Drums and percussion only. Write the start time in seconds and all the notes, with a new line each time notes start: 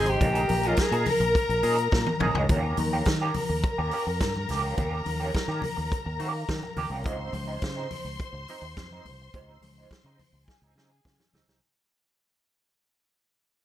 0.06 closed hi-hat, high conga
0.21 kick, closed hi-hat, muted conga, low conga
0.35 closed hi-hat
0.49 open hi-hat, high conga
0.63 closed hi-hat
0.77 kick, snare, closed hi-hat
0.92 closed hi-hat
1.06 open hi-hat, muted conga, high conga, low conga
1.20 closed hi-hat
1.35 kick, closed hi-hat
1.50 closed hi-hat
1.63 open hi-hat, muted conga
1.78 closed hi-hat
1.92 kick, snare, muted conga
2.06 high tom, high conga
2.20 mid tom, muted conga, low conga
2.35 floor tom, high conga
2.49 kick, closed hi-hat, low conga
2.77 open hi-hat, muted conga, high conga
3.05 kick, snare, closed hi-hat, muted conga
3.34 open hi-hat, muted conga, high conga, low conga
3.64 kick, closed hi-hat, muted conga
3.91 open hi-hat
4.21 kick, snare, closed hi-hat
4.36 high conga
4.49 snare, open hi-hat, low conga
4.78 kick, closed hi-hat, low conga
5.06 open hi-hat, muted conga, high conga
5.34 kick, snare, closed hi-hat, muted conga
5.62 open hi-hat, muted conga, high conga, low conga
5.91 kick, closed hi-hat, muted conga
6.19 open hi-hat, muted conga
6.49 kick, snare, closed hi-hat
6.63 high conga
6.77 open hi-hat, low conga
7.04 kick, closed hi-hat, low conga
7.33 open hi-hat, muted conga, high conga
7.62 kick, snare, closed hi-hat, muted conga
7.91 open hi-hat, muted conga, high conga, low conga
8.19 kick, closed hi-hat, muted conga
8.48 open hi-hat, muted conga
8.77 kick, snare, closed hi-hat, muted conga
8.91 high conga
9.05 open hi-hat, muted conga, low conga
9.34 kick, closed hi-hat, low conga
9.62 open hi-hat, muted conga, high conga
9.91 kick, snare, closed hi-hat
10.19 open hi-hat, high conga, low conga
10.48 kick, snare, muted conga
10.78 snare
11.05 kick, snare, muted conga
11.20 snare, high conga
11.34 snare, muted conga, low conga
11.49 snare